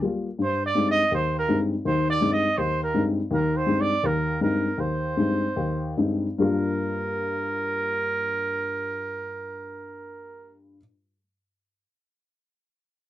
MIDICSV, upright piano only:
0, 0, Header, 1, 2, 480
1, 0, Start_track
1, 0, Tempo, 363857
1, 518, Time_signature, 4, 2, 24, 8
1, 5320, Tempo, 383632
1, 7240, Tempo, 425834
1, 15721, End_track
2, 0, Start_track
2, 0, Title_t, "Upright piano"
2, 0, Program_c, 0, 0
2, 27, Note_on_c, 0, 55, 60
2, 28, Note_on_c, 0, 58, 50
2, 38, Note_on_c, 0, 65, 57
2, 356, Note_off_c, 0, 55, 0
2, 357, Note_off_c, 0, 58, 0
2, 362, Note_off_c, 0, 65, 0
2, 508, Note_on_c, 0, 43, 61
2, 926, Note_off_c, 0, 43, 0
2, 986, Note_on_c, 0, 43, 53
2, 994, Note_on_c, 0, 56, 54
2, 996, Note_on_c, 0, 60, 50
2, 1001, Note_on_c, 0, 63, 61
2, 1315, Note_off_c, 0, 43, 0
2, 1319, Note_off_c, 0, 56, 0
2, 1320, Note_off_c, 0, 60, 0
2, 1322, Note_off_c, 0, 63, 0
2, 1470, Note_on_c, 0, 39, 76
2, 1886, Note_off_c, 0, 39, 0
2, 1954, Note_on_c, 0, 43, 60
2, 1955, Note_on_c, 0, 56, 56
2, 1964, Note_on_c, 0, 60, 56
2, 1965, Note_on_c, 0, 63, 64
2, 2278, Note_off_c, 0, 43, 0
2, 2278, Note_off_c, 0, 56, 0
2, 2283, Note_off_c, 0, 60, 0
2, 2283, Note_off_c, 0, 63, 0
2, 2442, Note_on_c, 0, 51, 71
2, 2446, Note_on_c, 0, 39, 67
2, 2852, Note_off_c, 0, 51, 0
2, 2854, Note_off_c, 0, 39, 0
2, 2911, Note_on_c, 0, 43, 54
2, 2916, Note_on_c, 0, 56, 52
2, 2925, Note_on_c, 0, 60, 54
2, 2926, Note_on_c, 0, 63, 65
2, 3236, Note_off_c, 0, 43, 0
2, 3239, Note_off_c, 0, 56, 0
2, 3243, Note_off_c, 0, 60, 0
2, 3244, Note_off_c, 0, 63, 0
2, 3401, Note_on_c, 0, 39, 73
2, 3811, Note_off_c, 0, 39, 0
2, 3878, Note_on_c, 0, 43, 63
2, 3884, Note_on_c, 0, 56, 51
2, 3887, Note_on_c, 0, 60, 55
2, 3890, Note_on_c, 0, 63, 66
2, 4199, Note_off_c, 0, 43, 0
2, 4202, Note_off_c, 0, 56, 0
2, 4204, Note_off_c, 0, 60, 0
2, 4205, Note_off_c, 0, 63, 0
2, 4363, Note_on_c, 0, 39, 71
2, 4365, Note_on_c, 0, 51, 67
2, 4773, Note_off_c, 0, 39, 0
2, 4775, Note_off_c, 0, 51, 0
2, 4830, Note_on_c, 0, 43, 54
2, 4835, Note_on_c, 0, 56, 57
2, 4841, Note_on_c, 0, 60, 58
2, 4845, Note_on_c, 0, 63, 60
2, 5158, Note_off_c, 0, 43, 0
2, 5161, Note_off_c, 0, 56, 0
2, 5164, Note_off_c, 0, 60, 0
2, 5166, Note_off_c, 0, 63, 0
2, 5321, Note_on_c, 0, 39, 80
2, 5722, Note_off_c, 0, 39, 0
2, 5788, Note_on_c, 0, 56, 50
2, 5790, Note_on_c, 0, 43, 56
2, 5793, Note_on_c, 0, 63, 67
2, 5794, Note_on_c, 0, 60, 54
2, 6105, Note_off_c, 0, 56, 0
2, 6106, Note_off_c, 0, 43, 0
2, 6108, Note_off_c, 0, 60, 0
2, 6108, Note_off_c, 0, 63, 0
2, 6253, Note_on_c, 0, 39, 67
2, 6673, Note_off_c, 0, 39, 0
2, 6740, Note_on_c, 0, 43, 54
2, 6742, Note_on_c, 0, 56, 55
2, 6748, Note_on_c, 0, 60, 52
2, 6754, Note_on_c, 0, 63, 59
2, 7074, Note_off_c, 0, 43, 0
2, 7076, Note_off_c, 0, 56, 0
2, 7079, Note_off_c, 0, 60, 0
2, 7082, Note_off_c, 0, 63, 0
2, 7236, Note_on_c, 0, 39, 77
2, 7634, Note_off_c, 0, 39, 0
2, 7696, Note_on_c, 0, 43, 56
2, 7697, Note_on_c, 0, 56, 53
2, 7700, Note_on_c, 0, 63, 65
2, 7701, Note_on_c, 0, 60, 52
2, 8015, Note_off_c, 0, 43, 0
2, 8015, Note_off_c, 0, 56, 0
2, 8017, Note_off_c, 0, 63, 0
2, 8018, Note_off_c, 0, 60, 0
2, 8160, Note_on_c, 0, 43, 63
2, 8169, Note_on_c, 0, 55, 60
2, 8173, Note_on_c, 0, 58, 63
2, 8186, Note_on_c, 0, 62, 58
2, 8195, Note_on_c, 0, 65, 70
2, 13099, Note_off_c, 0, 43, 0
2, 13108, Note_off_c, 0, 55, 0
2, 13112, Note_off_c, 0, 58, 0
2, 13125, Note_off_c, 0, 62, 0
2, 13134, Note_off_c, 0, 65, 0
2, 15721, End_track
0, 0, End_of_file